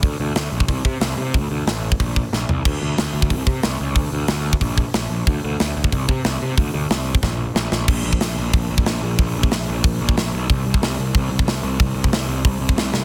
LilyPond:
<<
  \new Staff \with { instrumentName = "Picked electric bass" } { \clef bass \time 4/4 \key bes \lydian \tempo 4 = 184 d,8 d,8 d,8 bes,,8 c,8 c8 c,8 c8 | d,8 d,8 a,,4 bes,,4 bes,,8 c,8 | d,8 d,8 d,8 d,8 c,8 c8 c,8 cis,8 | d,8 d,8 d,4 bes,,4 bes,,8 bes,,8 |
d,8 d,8 d,8 d,8 c,8 c8 c,8 c8 | d,8 d,8 c,4 bes,,4 bes,,8 bes,,8 | bes,,8 bes,,8 bes,,8 bes,,8 bes,,8 bes,,8 bes,,8 bes,,8 | bes,,8 bes,,8 bes,,8 bes,,8 bes,,8 bes,,8 bes,,8 b,,8 |
c,8 c,8 c,8 c,8 c,8 c,8 c,8 c,8 | c,8 c,8 c,8 c,8 c,8 c,8 c,8 c,8 | }
  \new DrumStaff \with { instrumentName = "Drums" } \drummode { \time 4/4 <hho bd>4 <hho sn>8. bd16 <hho bd>8 bd8 <hho sn>4 | <hho bd>4 <hho sn>8. bd16 <hho bd>8 bd8 sn8 tomfh8 | <cymc bd>4 <hho sn>8. bd16 <hho bd>8 bd8 <hho sn>4 | <hho bd>4 <hho sn>8. bd16 <hho bd>8 bd8 <hho sn>4 |
<hho bd>4 <hho sn>8. bd16 <hho bd>8 bd8 <hho sn>4 | <hho bd>4 <hho sn>8. bd16 <bd sn>4 sn8 sn8 | <cymc bd>8. bd16 <hho sn>4 <hho bd>8. bd16 <hho sn>4 | <hho bd>8. bd16 <hho sn>4 <hho bd>8. bd16 <hho sn>4 |
<hho bd>8. bd16 <hho sn>4 <hho bd>8. bd16 <hho sn>4 | <hho bd>8. bd16 <hho sn>4 <hho bd>8. bd16 <hho sn>8 sn8 | }
>>